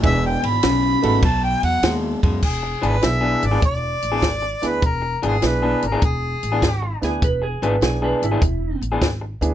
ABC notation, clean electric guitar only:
X:1
M:4/4
L:1/16
Q:"Swing" 1/4=100
K:Emix
V:1 name="Clean electric guitar"
[E,,B,,]4 [E,,C,]2 [E,,C,]2 [B,,F,]4 [B,,G,]2 [B,,G,]2 | z2 [E,B,DG] z2 [E,B,DG] z [E,B,DG] z3 [E,B,DG] z4 | z2 [E,B,DG] z2 [E,B,DG] z [E,B,DG] z3 [E,B,DG] z4 | z2 [E,B,DG] z2 [E,B,DG] z [E,B,DG] z3 [E,B,DG] z4 |]